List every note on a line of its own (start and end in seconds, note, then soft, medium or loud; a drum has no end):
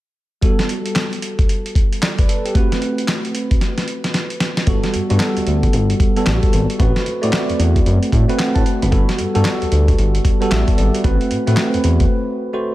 0.41 1.98 G3 medium
0.41 1.98 B3 medium
0.41 1.99 F#4 medium
0.41 1.99 A4 medium
0.41 kick loud
0.41 closed hi-hat medium
0.59 snare medium
0.59 closed hi-hat soft
0.69 closed hi-hat medium
0.86 closed hi-hat medium
0.95 snare loud
0.95 clap medium
0.95 closed hi-hat medium
1.13 closed hi-hat soft
1.22 closed hi-hat medium
1.39 kick medium
1.39 closed hi-hat soft
1.49 closed hi-hat medium
1.66 closed hi-hat medium
1.75 kick loud
1.75 closed hi-hat medium
1.93 closed hi-hat soft
2.02 2.18 D5 medium
2.02 snare loud
2.02 clap medium
2.02 closed hi-hat medium
2.19 2.28 B4 medium
2.19 kick medium
2.19 closed hi-hat medium
2.29 2.44 A4 medium
2.29 closed hi-hat medium
2.45 2.70 G4 medium
2.45 closed hi-hat medium
2.54 4.63 A3 medium
2.54 4.63 C4 medium
2.54 4.64 F#4 medium
2.54 4.64 B4 medium
2.54 kick loud
2.54 closed hi-hat medium
2.72 snare medium
2.72 closed hi-hat soft
2.82 closed hi-hat medium
2.98 closed hi-hat medium
3.08 snare loud
3.08 clap medium
3.08 closed hi-hat medium
3.25 closed hi-hat soft
3.35 closed hi-hat medium
3.51 kick medium
3.51 closed hi-hat soft
3.61 snare soft
3.61 closed hi-hat medium
3.78 snare soft
3.78 closed hi-hat soft
3.88 closed hi-hat medium
4.04 snare medium
4.04 closed hi-hat soft
4.14 snare medium
4.14 closed hi-hat medium
4.30 closed hi-hat soft
4.40 snare medium
4.40 closed hi-hat medium
4.57 snare medium
4.57 closed hi-hat medium
4.67 4.80 G1 medium
4.67 4.97 G3 medium
4.67 4.97 B3 medium
4.67 4.98 F#4 medium
4.67 4.98 A4 medium
4.67 kick loud
4.67 closed hi-hat medium
4.83 snare medium
4.83 closed hi-hat soft
4.94 5.01 G2 soft
4.94 closed hi-hat medium
5.10 5.18 G2 loud
5.10 5.88 G3 medium
5.10 5.88 B3 medium
5.10 5.88 F#4 medium
5.10 5.88 A4 medium
5.10 closed hi-hat medium
5.20 snare loud
5.20 clap medium
5.20 closed hi-hat medium
5.37 5.41 D2 soft
5.37 closed hi-hat soft
5.47 5.68 D2 medium
5.47 closed hi-hat medium
5.63 kick medium
5.63 closed hi-hat medium
5.73 5.94 G1 loud
5.73 closed hi-hat medium
5.90 closed hi-hat medium
6.00 kick loud
6.00 closed hi-hat medium
6.16 6.64 G3 medium
6.16 6.64 B3 medium
6.16 6.64 F#4 medium
6.16 6.65 A4 medium
6.16 closed hi-hat soft
6.26 6.40 A1 loud
6.26 snare loud
6.26 clap medium
6.26 closed hi-hat medium
6.43 kick medium
6.43 closed hi-hat soft
6.53 6.66 G#1 medium
6.53 closed hi-hat medium
6.70 closed hi-hat medium
6.79 6.93 A1 loud
6.79 7.09 A3 medium
6.79 7.09 C4 medium
6.79 7.10 F#4 medium
6.79 7.10 B4 medium
6.79 kick loud
6.79 closed hi-hat medium
6.96 snare medium
6.96 closed hi-hat soft
7.06 7.13 A2 soft
7.06 closed hi-hat medium
7.22 7.31 A2 medium
7.22 8.00 A3 medium
7.22 8.00 C4 medium
7.22 8.00 F#4 medium
7.22 8.01 D5 medium
7.22 closed hi-hat medium
7.33 snare loud
7.33 clap medium
7.33 closed hi-hat medium
7.50 7.53 E2 medium
7.50 closed hi-hat soft
7.59 7.80 E2 loud
7.59 closed hi-hat medium
7.76 kick medium
7.76 closed hi-hat medium
7.86 7.99 F#2 loud
7.86 closed hi-hat medium
8.03 closed hi-hat soft
8.12 8.25 A2 loud
8.12 kick medium
8.12 closed hi-hat medium
8.28 8.76 A3 medium
8.28 8.76 C4 medium
8.28 8.77 F#4 medium
8.28 8.77 B4 medium
8.28 closed hi-hat soft
8.39 8.55 F#5 medium
8.39 snare loud
8.39 clap loud
8.39 closed hi-hat medium
8.55 8.63 A2 medium
8.55 8.80 A5 medium
8.55 kick medium
8.55 closed hi-hat soft
8.66 closed hi-hat medium
8.82 8.90 F#1 loud
8.82 9.07 B5 medium
8.82 closed hi-hat medium
8.91 9.05 G1 loud
8.91 9.21 G3 medium
8.91 9.22 B3 medium
8.91 9.22 F#4 medium
8.91 9.22 A4 medium
8.91 kick loud
8.91 closed hi-hat medium
9.09 snare medium
9.09 closed hi-hat medium
9.19 9.26 G2 soft
9.19 closed hi-hat medium
9.34 9.43 G2 loud
9.34 10.12 G3 medium
9.34 10.12 B3 medium
9.34 10.13 F#4 medium
9.34 10.13 A4 medium
9.34 closed hi-hat medium
9.45 snare loud
9.45 clap medium
9.45 closed hi-hat medium
9.62 9.66 D2 soft
9.62 closed hi-hat soft
9.72 9.92 D2 medium
9.72 closed hi-hat medium
9.88 kick medium
9.88 closed hi-hat medium
9.99 10.19 G1 loud
9.99 closed hi-hat medium
10.15 closed hi-hat soft
10.25 kick loud
10.25 closed hi-hat medium
10.41 10.89 G3 medium
10.41 10.89 B3 medium
10.41 10.89 F#4 medium
10.41 10.89 A4 medium
10.41 closed hi-hat soft
10.51 10.64 A1 medium
10.51 10.77 E5 medium
10.51 snare loud
10.51 clap medium
10.51 closed hi-hat medium
10.68 kick medium
10.68 closed hi-hat soft
10.78 10.91 G#1 loud
10.78 10.94 D5 medium
10.78 closed hi-hat medium
10.94 11.04 B4 medium
10.94 closed hi-hat medium
11.04 11.17 A1 loud
11.04 11.34 A3 medium
11.04 11.34 C4 medium
11.04 11.34 F#4 medium
11.04 11.35 B4 medium
11.04 kick loud
11.04 closed hi-hat medium
11.21 closed hi-hat medium
11.31 11.38 A2 soft
11.31 closed hi-hat medium
11.47 11.55 A2 medium
11.47 12.25 A3 medium
11.47 12.25 C4 medium
11.47 12.25 F#4 medium
11.47 12.25 B4 medium
11.47 closed hi-hat medium
11.57 snare loud
11.57 clap medium
11.57 closed hi-hat medium
11.74 11.78 E2 medium
11.74 closed hi-hat soft
11.84 12.05 E2 medium
11.84 closed hi-hat medium
12.00 kick medium
12.00 closed hi-hat medium
12.53 12.75 A3 medium
12.53 12.75 C4 medium
12.53 12.75 F#4 medium
12.53 12.75 C5 medium